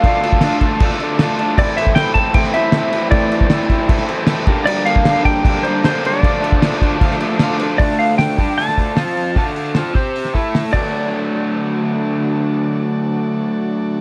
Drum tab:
CC |x-x-x-x-x-x-x-x-|x-x-x-x-x-x-x-x-|x-x-x-x-x-x-x-x-|x-x-x-x-x-x-x-x-|
HH |----------------|----------------|----------------|----------------|
SD |----oo---o--o---|----oo---o--o---|----oo---o--o---|----oo------o---|
BD |o--o--o-o-------|o--o--o-o-------|o--o--o-o-----o-|---o--o-o-------|

CC |x-x-x-x-x-x-x-x-|----------------|--------------x-|----------------|
HH |----------------|o-o-o-o-o-o-o-o-|o-o-o-o-o-o-o---|----------------|
SD |----oo---o--o---|----o----o--o---|----o----o--o---|----------------|
BD |o--o--o-o-------|o-----o---o-----|o-----o---o---o-|----------------|

CC |----------------|
HH |----------------|
SD |----------------|
BD |----------------|